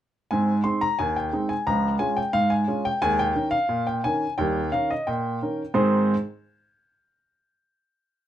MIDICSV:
0, 0, Header, 1, 2, 480
1, 0, Start_track
1, 0, Key_signature, -4, "major"
1, 0, Tempo, 681818
1, 216, Time_signature, 2, 2, 24, 8
1, 5826, End_track
2, 0, Start_track
2, 0, Title_t, "Upright piano"
2, 0, Program_c, 0, 0
2, 216, Note_on_c, 0, 80, 77
2, 222, Note_on_c, 0, 44, 73
2, 232, Note_on_c, 0, 60, 50
2, 360, Note_off_c, 0, 60, 0
2, 408, Note_off_c, 0, 80, 0
2, 424, Note_off_c, 0, 44, 0
2, 448, Note_on_c, 0, 84, 75
2, 451, Note_on_c, 0, 56, 43
2, 456, Note_on_c, 0, 60, 39
2, 456, Note_on_c, 0, 63, 48
2, 572, Note_off_c, 0, 84, 0
2, 572, Note_on_c, 0, 82, 85
2, 585, Note_off_c, 0, 56, 0
2, 588, Note_off_c, 0, 60, 0
2, 588, Note_off_c, 0, 63, 0
2, 694, Note_off_c, 0, 82, 0
2, 695, Note_on_c, 0, 80, 85
2, 701, Note_on_c, 0, 39, 71
2, 816, Note_off_c, 0, 80, 0
2, 820, Note_on_c, 0, 79, 75
2, 903, Note_off_c, 0, 39, 0
2, 937, Note_on_c, 0, 56, 45
2, 939, Note_on_c, 0, 60, 45
2, 940, Note_on_c, 0, 63, 49
2, 1046, Note_off_c, 0, 79, 0
2, 1050, Note_on_c, 0, 80, 76
2, 1069, Note_off_c, 0, 56, 0
2, 1071, Note_off_c, 0, 60, 0
2, 1071, Note_off_c, 0, 63, 0
2, 1173, Note_off_c, 0, 80, 0
2, 1173, Note_on_c, 0, 37, 75
2, 1174, Note_on_c, 0, 82, 84
2, 1187, Note_on_c, 0, 53, 50
2, 1317, Note_off_c, 0, 53, 0
2, 1367, Note_off_c, 0, 82, 0
2, 1379, Note_off_c, 0, 37, 0
2, 1402, Note_on_c, 0, 80, 84
2, 1406, Note_on_c, 0, 56, 47
2, 1408, Note_on_c, 0, 61, 49
2, 1411, Note_on_c, 0, 65, 51
2, 1525, Note_on_c, 0, 79, 84
2, 1530, Note_off_c, 0, 80, 0
2, 1541, Note_off_c, 0, 56, 0
2, 1543, Note_off_c, 0, 61, 0
2, 1545, Note_off_c, 0, 65, 0
2, 1642, Note_on_c, 0, 77, 95
2, 1643, Note_on_c, 0, 44, 73
2, 1651, Note_off_c, 0, 79, 0
2, 1761, Note_on_c, 0, 80, 78
2, 1769, Note_off_c, 0, 77, 0
2, 1853, Note_off_c, 0, 44, 0
2, 1886, Note_on_c, 0, 56, 49
2, 1886, Note_on_c, 0, 61, 48
2, 1890, Note_on_c, 0, 65, 50
2, 1995, Note_off_c, 0, 80, 0
2, 2007, Note_on_c, 0, 79, 85
2, 2020, Note_off_c, 0, 56, 0
2, 2020, Note_off_c, 0, 61, 0
2, 2023, Note_off_c, 0, 65, 0
2, 2124, Note_on_c, 0, 80, 102
2, 2126, Note_on_c, 0, 39, 82
2, 2131, Note_off_c, 0, 79, 0
2, 2139, Note_on_c, 0, 56, 54
2, 2247, Note_on_c, 0, 79, 91
2, 2249, Note_off_c, 0, 80, 0
2, 2269, Note_off_c, 0, 56, 0
2, 2332, Note_off_c, 0, 39, 0
2, 2358, Note_on_c, 0, 51, 50
2, 2361, Note_on_c, 0, 61, 42
2, 2365, Note_on_c, 0, 70, 47
2, 2441, Note_off_c, 0, 79, 0
2, 2470, Note_on_c, 0, 77, 86
2, 2494, Note_off_c, 0, 51, 0
2, 2496, Note_off_c, 0, 61, 0
2, 2498, Note_off_c, 0, 70, 0
2, 2596, Note_on_c, 0, 46, 73
2, 2707, Note_off_c, 0, 77, 0
2, 2723, Note_on_c, 0, 79, 77
2, 2806, Note_off_c, 0, 46, 0
2, 2845, Note_on_c, 0, 80, 89
2, 2846, Note_off_c, 0, 79, 0
2, 2850, Note_on_c, 0, 61, 44
2, 2851, Note_on_c, 0, 51, 48
2, 2857, Note_on_c, 0, 70, 48
2, 2982, Note_off_c, 0, 51, 0
2, 2982, Note_off_c, 0, 61, 0
2, 2987, Note_off_c, 0, 70, 0
2, 3039, Note_off_c, 0, 80, 0
2, 3081, Note_on_c, 0, 79, 82
2, 3086, Note_on_c, 0, 39, 77
2, 3100, Note_on_c, 0, 55, 53
2, 3229, Note_off_c, 0, 55, 0
2, 3292, Note_off_c, 0, 39, 0
2, 3314, Note_off_c, 0, 79, 0
2, 3323, Note_on_c, 0, 77, 80
2, 3327, Note_on_c, 0, 51, 42
2, 3328, Note_on_c, 0, 61, 46
2, 3335, Note_on_c, 0, 70, 53
2, 3447, Note_off_c, 0, 77, 0
2, 3453, Note_on_c, 0, 75, 70
2, 3461, Note_off_c, 0, 51, 0
2, 3461, Note_off_c, 0, 61, 0
2, 3466, Note_off_c, 0, 70, 0
2, 3569, Note_on_c, 0, 79, 75
2, 3573, Note_off_c, 0, 75, 0
2, 3573, Note_on_c, 0, 46, 67
2, 3779, Note_off_c, 0, 46, 0
2, 3816, Note_on_c, 0, 51, 39
2, 3819, Note_on_c, 0, 61, 37
2, 3821, Note_on_c, 0, 70, 45
2, 3949, Note_off_c, 0, 51, 0
2, 3951, Note_off_c, 0, 61, 0
2, 3952, Note_off_c, 0, 70, 0
2, 4031, Note_off_c, 0, 79, 0
2, 4040, Note_on_c, 0, 51, 75
2, 4042, Note_on_c, 0, 44, 86
2, 4042, Note_on_c, 0, 60, 74
2, 4045, Note_on_c, 0, 63, 73
2, 4045, Note_on_c, 0, 68, 73
2, 4045, Note_on_c, 0, 72, 78
2, 4048, Note_on_c, 0, 80, 57
2, 4316, Note_off_c, 0, 51, 0
2, 4317, Note_off_c, 0, 44, 0
2, 4317, Note_off_c, 0, 60, 0
2, 4318, Note_off_c, 0, 63, 0
2, 4318, Note_off_c, 0, 68, 0
2, 4319, Note_off_c, 0, 72, 0
2, 4320, Note_off_c, 0, 80, 0
2, 5826, End_track
0, 0, End_of_file